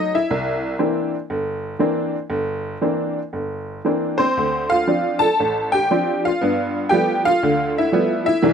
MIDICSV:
0, 0, Header, 1, 2, 480
1, 0, Start_track
1, 0, Tempo, 499168
1, 287, Time_signature, 4, 2, 24, 8
1, 2208, Tempo, 516796
1, 5568, Tempo, 500835
1, 8077, End_track
2, 0, Start_track
2, 0, Title_t, "Honky-tonk piano"
2, 0, Program_c, 0, 3
2, 0, Note_on_c, 0, 54, 56
2, 0, Note_on_c, 0, 57, 49
2, 0, Note_on_c, 0, 63, 66
2, 0, Note_on_c, 0, 75, 101
2, 141, Note_on_c, 0, 64, 63
2, 143, Note_off_c, 0, 75, 0
2, 144, Note_on_c, 0, 76, 80
2, 146, Note_off_c, 0, 54, 0
2, 146, Note_off_c, 0, 57, 0
2, 148, Note_off_c, 0, 63, 0
2, 294, Note_on_c, 0, 36, 80
2, 706, Note_off_c, 0, 36, 0
2, 760, Note_on_c, 0, 60, 48
2, 764, Note_on_c, 0, 52, 51
2, 764, Note_on_c, 0, 58, 49
2, 768, Note_on_c, 0, 62, 53
2, 1056, Note_off_c, 0, 64, 0
2, 1057, Note_off_c, 0, 76, 0
2, 1103, Note_off_c, 0, 60, 0
2, 1105, Note_off_c, 0, 52, 0
2, 1105, Note_off_c, 0, 58, 0
2, 1107, Note_off_c, 0, 62, 0
2, 1250, Note_on_c, 0, 31, 69
2, 1666, Note_off_c, 0, 31, 0
2, 1726, Note_on_c, 0, 52, 57
2, 1728, Note_on_c, 0, 58, 46
2, 1733, Note_on_c, 0, 60, 49
2, 1733, Note_on_c, 0, 62, 60
2, 2065, Note_off_c, 0, 52, 0
2, 2066, Note_off_c, 0, 58, 0
2, 2068, Note_off_c, 0, 60, 0
2, 2069, Note_off_c, 0, 62, 0
2, 2208, Note_on_c, 0, 31, 76
2, 2623, Note_off_c, 0, 31, 0
2, 2690, Note_on_c, 0, 52, 50
2, 2693, Note_on_c, 0, 58, 46
2, 2694, Note_on_c, 0, 62, 57
2, 2696, Note_on_c, 0, 60, 46
2, 3027, Note_off_c, 0, 52, 0
2, 3028, Note_off_c, 0, 58, 0
2, 3028, Note_off_c, 0, 62, 0
2, 3029, Note_off_c, 0, 60, 0
2, 3168, Note_on_c, 0, 31, 63
2, 3585, Note_off_c, 0, 31, 0
2, 3649, Note_on_c, 0, 52, 54
2, 3652, Note_on_c, 0, 58, 47
2, 3658, Note_on_c, 0, 60, 45
2, 3661, Note_on_c, 0, 62, 51
2, 3955, Note_on_c, 0, 72, 90
2, 3956, Note_off_c, 0, 60, 0
2, 3970, Note_on_c, 0, 60, 65
2, 3992, Note_off_c, 0, 52, 0
2, 3994, Note_off_c, 0, 58, 0
2, 3998, Note_off_c, 0, 62, 0
2, 4136, Note_on_c, 0, 38, 67
2, 4421, Note_off_c, 0, 60, 0
2, 4437, Note_on_c, 0, 77, 98
2, 4456, Note_on_c, 0, 65, 70
2, 4462, Note_off_c, 0, 72, 0
2, 4553, Note_off_c, 0, 38, 0
2, 4603, Note_on_c, 0, 53, 53
2, 4604, Note_on_c, 0, 60, 47
2, 4612, Note_on_c, 0, 62, 55
2, 4891, Note_off_c, 0, 77, 0
2, 4897, Note_on_c, 0, 81, 110
2, 4902, Note_off_c, 0, 65, 0
2, 4920, Note_on_c, 0, 69, 82
2, 4946, Note_off_c, 0, 53, 0
2, 4947, Note_off_c, 0, 60, 0
2, 4951, Note_off_c, 0, 62, 0
2, 5089, Note_on_c, 0, 33, 62
2, 5372, Note_off_c, 0, 69, 0
2, 5389, Note_on_c, 0, 79, 96
2, 5410, Note_off_c, 0, 81, 0
2, 5410, Note_on_c, 0, 67, 69
2, 5506, Note_off_c, 0, 33, 0
2, 5563, Note_on_c, 0, 53, 57
2, 5566, Note_on_c, 0, 62, 58
2, 5570, Note_on_c, 0, 60, 54
2, 5850, Note_off_c, 0, 79, 0
2, 5863, Note_off_c, 0, 67, 0
2, 5892, Note_on_c, 0, 77, 93
2, 5908, Note_on_c, 0, 65, 73
2, 5911, Note_off_c, 0, 53, 0
2, 5913, Note_off_c, 0, 62, 0
2, 5915, Note_off_c, 0, 60, 0
2, 6048, Note_on_c, 0, 59, 69
2, 6058, Note_on_c, 0, 43, 69
2, 6468, Note_off_c, 0, 59, 0
2, 6474, Note_off_c, 0, 43, 0
2, 6501, Note_off_c, 0, 65, 0
2, 6507, Note_on_c, 0, 79, 88
2, 6519, Note_on_c, 0, 67, 76
2, 6534, Note_on_c, 0, 53, 58
2, 6543, Note_on_c, 0, 57, 49
2, 6546, Note_on_c, 0, 55, 51
2, 6549, Note_on_c, 0, 59, 65
2, 6551, Note_off_c, 0, 77, 0
2, 6825, Note_off_c, 0, 67, 0
2, 6852, Note_off_c, 0, 79, 0
2, 6852, Note_on_c, 0, 77, 102
2, 6870, Note_on_c, 0, 65, 88
2, 6871, Note_off_c, 0, 53, 0
2, 6875, Note_off_c, 0, 57, 0
2, 6877, Note_off_c, 0, 55, 0
2, 6878, Note_off_c, 0, 59, 0
2, 7017, Note_on_c, 0, 50, 72
2, 7021, Note_on_c, 0, 38, 68
2, 7300, Note_off_c, 0, 77, 0
2, 7310, Note_off_c, 0, 65, 0
2, 7360, Note_on_c, 0, 76, 77
2, 7369, Note_on_c, 0, 64, 65
2, 7431, Note_off_c, 0, 50, 0
2, 7433, Note_off_c, 0, 38, 0
2, 7493, Note_on_c, 0, 53, 57
2, 7495, Note_on_c, 0, 57, 54
2, 7501, Note_on_c, 0, 55, 55
2, 7502, Note_on_c, 0, 59, 69
2, 7798, Note_off_c, 0, 64, 0
2, 7803, Note_off_c, 0, 76, 0
2, 7817, Note_on_c, 0, 76, 93
2, 7830, Note_off_c, 0, 53, 0
2, 7831, Note_off_c, 0, 57, 0
2, 7834, Note_off_c, 0, 55, 0
2, 7834, Note_on_c, 0, 64, 69
2, 7835, Note_off_c, 0, 59, 0
2, 7975, Note_on_c, 0, 52, 81
2, 7983, Note_on_c, 0, 36, 83
2, 8077, Note_off_c, 0, 36, 0
2, 8077, Note_off_c, 0, 52, 0
2, 8077, Note_off_c, 0, 64, 0
2, 8077, Note_off_c, 0, 76, 0
2, 8077, End_track
0, 0, End_of_file